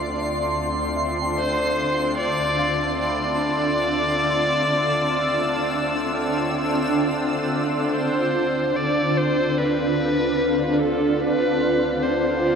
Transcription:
0.00 7.87 D2 medium
0.00 8.00 D3 medium
0.00 12.55 D3 medium
0.00 8.00 A3 medium
0.00 12.55 C4 medium
0.00 12.55 D4 medium
0.00 12.55 F4 medium
0.00 2.56 D5 medium
0.00 0.95 E5 soft
0.00 7.94 C6 medium
0.96 3.18 E5 soft
1.22 3.41 G5 soft
1.37 2.15 C5 loud
1.37 3.59 D5 medium
2.18 2.94 D5 loud
2.31 10.83 E6 medium
2.58 4.81 F5 medium
2.82 5.03 A5 soft
2.99 7.05 D5 medium
3.07 5.26 B5 medium
5.42 7.71 E5 medium
7.08 8.29 D5 soft
7.92 12.55 D2 medium
7.92 10.18 A4 medium
7.92 8.78 C5 medium
8.16 12.55 D5 medium
8.77 9.19 D5 medium
9.17 9.60 C5 medium
9.57 11.81 B4 medium
9.57 10.73 B4 medium
9.83 12.03 D5 soft
10.73 10.82 B4 medium
10.80 11.22 A4 medium
11.21 12.04 B4 loud
12.03 12.55 C5 medium

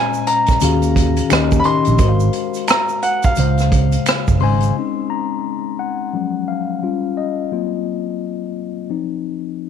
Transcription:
0.00 0.46 A#2 medium
0.00 0.47 G#3 medium
0.00 0.47 C#4 medium
0.00 0.47 C5 medium
0.00 0.48 D#5 medium
0.00 0.24 G#5 medium
0.14 shaker medium
0.27 1.56 A#5 medium
0.27 closed hi-hat medium
0.46 kick medium
0.46 closed hi-hat soft
0.46 shaker soft
0.50 cross-stick soft
0.60 1.20 D#2 medium
0.60 1.23 D#3 medium
0.60 1.23 C#4 medium
0.60 1.24 F#4 medium
0.60 1.24 G#4 medium
0.60 1.24 F5 medium
0.60 closed hi-hat medium
0.60 shaker medium
0.82 closed hi-hat soft
0.82 shaker soft
0.96 kick medium
0.96 closed hi-hat medium
1.16 closed hi-hat medium
1.16 shaker soft
1.29 1.59 D#2 loud
1.29 1.60 D#3 medium
1.29 1.61 C#4 medium
1.29 1.62 G4 medium
1.29 1.62 D#5 medium
1.29 finger snap medium
1.29 cross-stick loud
1.29 closed hi-hat medium
1.29 shaker medium
1.51 kick medium
1.51 shaker soft
1.60 1.65 B5 medium
1.64 1.95 D#3 medium
1.64 1.96 C#4 medium
1.64 1.96 G4 medium
1.64 1.97 D#5 medium
1.64 2.64 C6 medium
1.64 closed hi-hat medium
1.84 1.97 A#1 loud
1.84 closed hi-hat soft
1.84 shaker soft
1.98 2.28 G#1 loud
1.98 3.22 G#3 medium
1.98 3.23 F#4 medium
1.98 3.23 A#4 medium
1.98 3.23 C5 medium
1.98 2.09 D#5 medium
1.98 kick loud
1.98 closed hi-hat medium
1.98 shaker medium
2.09 3.27 F5 medium
2.20 shaker soft
2.33 closed hi-hat medium
2.54 closed hi-hat soft
2.54 shaker soft
2.67 3.03 A#5 medium
2.67 finger snap medium
2.67 cross-stick loud
2.67 closed hi-hat medium
2.67 shaker medium
2.89 shaker soft
3.02 3.23 F#5 medium
3.02 closed hi-hat medium
3.22 4.02 F5 medium
3.22 kick medium
3.22 closed hi-hat soft
3.22 shaker soft
3.36 3.95 C#2 medium
3.36 4.30 C#3 medium
3.36 4.30 G#3 medium
3.36 4.31 C5 medium
3.36 closed hi-hat medium
3.36 shaker medium
3.40 4.31 F5 medium
3.58 cross-stick soft
3.58 closed hi-hat soft
3.58 shaker soft
3.72 kick medium
3.72 closed hi-hat medium
3.92 closed hi-hat medium
3.92 shaker soft
4.06 finger snap medium
4.06 cross-stick loud
4.06 closed hi-hat medium
4.06 shaker medium
4.28 4.42 F#1 medium
4.28 kick medium
4.28 shaker soft
4.40 4.70 G#1 medium
4.40 4.71 C#3 medium
4.40 4.72 G#3 medium
4.40 4.72 C5 medium
4.40 5.11 C6 medium
4.40 open hi-hat soft
4.44 4.73 G#5 medium
4.60 closed hi-hat soft
4.60 shaker soft
4.76 6.09 G#3 soft
4.76 6.09 C4 soft
4.76 6.10 C#4 soft
4.76 6.10 D#4 soft
5.10 5.75 A#5 medium
5.79 6.44 F#5 medium
6.13 6.79 F3 soft
6.13 6.78 F#3 soft
6.13 6.79 G#3 soft
6.13 6.79 C#4 soft
6.48 7.19 F5 medium
6.83 7.31 G3 soft
6.83 7.32 C#4 soft
6.83 7.32 F4 soft
7.17 7.82 D#5 medium
7.52 8.51 F#3 soft
7.52 8.51 A#3 soft
7.52 8.51 C4 soft
7.52 8.51 F4 soft
8.90 9.70 F3 soft
8.90 9.70 C4 soft
8.90 9.70 D#4 soft

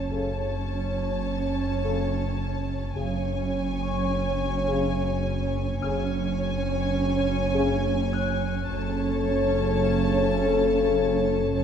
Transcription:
0.00 1.73 B5 soft
0.09 2.92 F#1 medium
0.09 2.93 F#1 soft
0.09 2.92 F#2 soft
0.09 0.31 C#3 soft
0.09 2.92 C#4 soft
0.09 0.31 A4 soft
0.09 2.92 C#5 soft
0.09 2.93 A5 soft
1.83 2.03 C#3 soft
1.83 2.03 A4 soft
2.95 5.78 F#1 medium
2.95 5.79 F#1 medium
2.95 5.78 F#2 medium
2.95 3.16 C#3 soft
2.95 5.79 C#4 soft
2.95 3.16 G#4 soft
2.95 5.79 C#5 soft
2.95 5.78 G#5 soft
3.81 7.71 C#6 soft
4.68 4.89 C#3 medium
4.68 4.88 G#4 medium
5.81 8.64 F#1 medium
5.81 8.65 F#1 medium
5.81 8.64 F#2 medium
5.81 6.04 C#3 medium
5.81 8.64 C#4 medium
5.81 6.04 G#4 medium
5.81 8.64 C#5 medium
5.81 8.63 G#5 medium
5.81 8.70 F6 medium
7.54 7.74 C#3 medium
7.54 7.74 G#4 medium
8.13 11.64 F#6 medium
8.67 11.49 F#1 medium
8.67 11.50 F#1 medium
8.67 11.50 F#2 medium
8.67 11.50 C#3 medium
8.67 11.50 C#4 medium
8.67 11.51 A4 medium
8.67 11.50 C#5 medium
8.67 11.50 A5 medium
11.54 11.64 F#1 medium
11.54 11.64 F#2 medium
11.54 11.64 C#3 medium
11.54 11.64 C#4 medium
11.54 11.64 A4 medium
11.54 11.64 C#5 medium
11.54 11.64 A5 medium

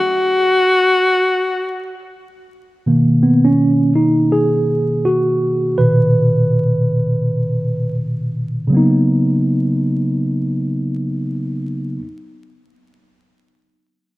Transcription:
0.00 2.11 F#4 loud
2.86 5.75 B2 medium
2.86 5.76 D#3 soft
2.86 5.76 A#3 medium
3.23 3.46 B3 medium
3.45 3.93 C#4 medium
3.96 4.34 D#4 medium
4.32 5.08 G#4 medium
5.05 5.81 F#4 medium
5.78 8.68 A#2 medium
5.78 8.68 B2 medium
5.78 8.68 D#3 soft
5.78 7.94 B4 medium
8.67 11.96 C#3 medium
8.67 11.99 F#3 medium
8.72 12.02 A#3 medium
8.72 12.04 B3 medium
8.77 12.06 D#4 medium

